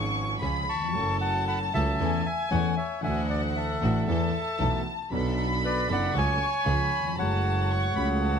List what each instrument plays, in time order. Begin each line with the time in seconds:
Already playing: grand piano G#1 G#2 F3 G#3 C#4 G#4, double bass G#1, string section C#4 F4 G#4, violin section C#6
0.40 double bass C#2, grand piano C#2 C#3 F3 G#3 C#4 G#4, string section C#4 F4 G#4, violin section B5
0.69 bandoneon A5 C#6
0.74 grand piano D#2
0.82 grand piano E2
0.88 grand piano F2
0.93 double bass F#1, grand piano F#2 F#3 A3 C#4 A4, string section C#4 F#4 A4, violin section A5
1.21 bandoneon F#5 A5
1.48 bandoneon F#5 B5
1.73 double bass C#2, grand piano C#2 C#3 F#3 A3 C#4 A4, string section C#4 F#4 A4, bandoneon E5 A5
1.98 double bass E2, grand piano E2 E3 A3 C#4 A4, string section C#4 E4 A4, violin section G#5
2.26 bandoneon E5 G#5
2.51 double bass E2, grand piano E2 E3 A3 C#4 A4, string section C#4 E4 A4, bandoneon C#5 F#5
2.77 bandoneon C#5 E5
3.01 double bass D2, grand piano D2 D3 E3 A3 D4, string section D4 E4 F#4, bandoneon E5 G#5, violin section F#5
3.05 grand piano F#4
3.29 bandoneon D5 F#5
3.56 bandoneon A4 E5
3.81 grand piano A1 A2 E3 A3 D4 F#4, double bass A1, string section D4 E4 F#4
4.06 grand piano E2 E3 A3 B3 A4, double bass E2, string section B3 E4 A4, violin section A5
4.58 double bass B1, grand piano B1 B2 E3 A3 B3 A4, string section B3 E4 A4
5.10 double bass B1, grand piano B1 B2 F#3 B3 D4 A4, string section B3 D4 A4, violin section B5
5.65 bandoneon B4 D5
5.87 double bass F#1, grand piano F#1 F#2 F#3 B3 D4 A4, string section B3 D4 A4
5.92 bandoneon D5 F#5
6.14 double bass C#2, grand piano C#2 C#3 F#3 A3 C#4 A4, string section C#4 F#4 A4, violin section C#6
6.18 bandoneon C#5 G#5
6.64 double bass C#2, grand piano C#2 C#3 F3 G#3 C#4 G#4, string section C#4 F4 G#4, violin section B5
6.99 grand piano D#2
7.05 grand piano E2
7.12 grand piano F2
7.17 double bass F#1, grand piano F#2 F#3 A3 C#4, string section G#3 A3 F#4, bandoneon C#5 F#5, violin section A5
7.21 grand piano G#3
7.70 violin section C#6
7.94 double bass C#2, grand piano C#2 C#3 F#3 A3 C#4, string section G#3 A3 F#4, violin section B5
7.98 grand piano G#3
8.21 violin section A5